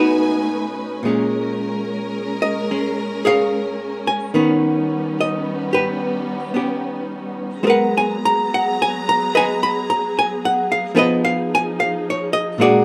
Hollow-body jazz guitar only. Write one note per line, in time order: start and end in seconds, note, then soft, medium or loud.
0.00 1.02 B2 soft
0.00 1.01 D#4 soft
0.00 1.01 F#4 soft
0.00 0.73 B4 medium
1.03 4.33 A#2 soft
1.03 2.70 G#3 soft
1.03 2.70 C#4 soft
2.42 2.70 D#5 medium
2.71 4.35 G#3 soft
2.71 4.35 C#4 soft
3.25 4.30 G#4 medium
3.25 4.31 C#5 soft
3.25 4.03 F5 medium
4.07 4.35 G#5 medium
4.34 7.63 D#3 soft
4.34 6.53 B3 medium
4.34 6.54 C#4 soft
5.21 5.69 D#5 medium
5.73 6.54 G4 soft
5.73 6.56 B4 medium
6.54 7.63 B3 soft
6.54 7.63 C#4 soft
6.54 7.65 G4 soft
7.63 10.94 G#3 soft
7.63 7.66 B3 soft
7.63 7.67 F#4 soft
7.63 9.27 A#4 soft
7.68 9.27 B4 soft
7.68 7.93 F#5 medium
7.97 8.20 G#5 medium
8.25 8.50 A#5 medium
8.54 8.76 F#5 medium
8.82 9.04 G#5 medium
9.09 9.31 A#5 medium
9.35 10.93 B4 medium
9.35 10.93 D#5 medium
9.35 9.61 G#5 medium
9.63 9.88 B5 medium
9.90 10.13 A#5 medium
10.19 10.41 G#5 medium
10.45 10.68 F#5 medium
10.72 10.96 F5 medium
10.95 12.59 F3 soft
10.95 12.60 B3 medium
10.95 10.98 G#4 soft
10.95 12.57 B4 soft
10.95 11.22 D#5 medium
11.25 11.51 F5 medium
11.55 11.79 G#5 medium
11.80 12.06 F5 medium
12.10 12.33 C#5 medium
12.33 12.58 D#5 medium
12.58 12.85 A#2 soft
12.58 12.85 G#3 soft
12.58 12.85 F#4 medium
12.58 12.85 G#4 medium
12.58 12.85 D5 medium